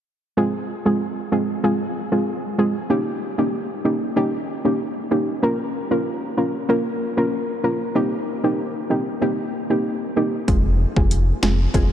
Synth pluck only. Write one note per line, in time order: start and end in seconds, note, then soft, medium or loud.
0.37 0.57 G#3 medium
0.37 0.57 C4 medium
0.37 0.57 F4 medium
0.37 0.57 G#4 loud
0.85 1.04 G#3 medium
0.85 1.04 C4 medium
0.85 1.04 F4 medium
0.85 1.04 G#4 medium
1.32 1.52 G#3 medium
1.32 1.52 C4 medium
1.32 1.52 F4 medium
1.32 1.52 G#4 medium
1.63 2.08 G#3 medium
1.63 2.08 C4 medium
1.63 2.08 F4 medium
1.63 2.08 G#4 loud
2.12 2.55 G#3 medium
2.12 2.55 C4 medium
2.12 2.55 F4 medium
2.12 2.55 G#4 medium
2.58 2.88 G#3 medium
2.58 2.88 C4 medium
2.58 2.88 F4 medium
2.58 2.88 G#4 medium
2.90 3.10 A#3 medium
2.90 3.10 C#4 medium
2.90 3.10 D#4 medium
2.90 3.10 G4 loud
3.38 3.56 A#3 medium
3.38 3.57 C#4 medium
3.38 3.57 D#4 medium
3.38 3.57 G4 medium
3.85 4.04 A#3 medium
3.85 4.05 C#4 medium
3.85 4.05 D#4 medium
3.85 4.05 G4 medium
4.16 4.61 A#3 medium
4.16 4.61 C#4 medium
4.16 4.61 D#4 medium
4.16 4.61 G4 loud
4.65 5.07 A#3 medium
4.65 5.08 C#4 medium
4.65 5.08 D#4 medium
4.65 5.08 G4 medium
5.11 5.40 A#3 medium
5.11 5.40 C#4 medium
5.11 5.40 D#4 medium
5.11 5.40 G4 medium
5.43 5.62 A#3 medium
5.43 5.63 C#4 medium
5.43 5.63 F4 medium
5.43 5.63 A#4 loud
5.91 6.09 A#3 medium
5.91 6.09 C#4 medium
5.91 6.09 F4 medium
5.91 6.09 A#4 medium
6.37 6.57 A#3 medium
6.37 6.57 C#4 medium
6.37 6.57 F4 medium
6.37 6.57 A#4 medium
6.69 7.13 A#3 medium
6.69 7.13 C#4 medium
6.69 7.13 F4 medium
6.69 7.13 A#4 loud
7.17 7.60 A#3 medium
7.17 7.60 C#4 medium
7.17 7.60 F4 medium
7.17 7.60 A#4 medium
7.63 7.93 A#3 medium
7.63 7.93 C#4 medium
7.63 7.93 F4 medium
7.63 7.93 A#4 medium
7.95 8.15 A#3 medium
7.95 8.15 C4 medium
7.95 8.15 D#4 medium
7.95 8.15 G4 loud
8.44 8.62 A#3 medium
8.44 8.62 C4 medium
8.44 8.62 D#4 medium
8.44 8.62 G4 medium
8.90 9.10 A#3 medium
8.90 9.10 C4 medium
8.90 9.10 D#4 medium
8.90 9.10 G4 medium
9.21 9.66 A#3 medium
9.21 9.66 C4 medium
9.21 9.66 D#4 medium
9.21 9.66 G4 loud
9.70 10.13 A#3 medium
9.70 10.13 C4 medium
9.70 10.13 D#4 medium
9.70 10.13 G4 medium
10.16 10.45 A#3 medium
10.16 10.46 C4 medium
10.16 10.46 D#4 medium
10.16 10.46 G4 medium
10.48 10.68 G#3 medium
10.48 10.68 C4 medium
10.48 10.68 F4 medium
10.48 10.68 G#4 loud
10.96 11.15 G#3 medium
10.96 11.15 C4 medium
10.96 11.15 F4 medium
10.96 11.15 G#4 medium
11.42 11.62 G#3 medium
11.42 11.63 C4 medium
11.42 11.63 F4 medium
11.42 11.63 G#4 medium
11.74 11.92 G#3 medium
11.74 11.92 C4 medium
11.74 11.92 F4 medium
11.74 11.92 G#4 loud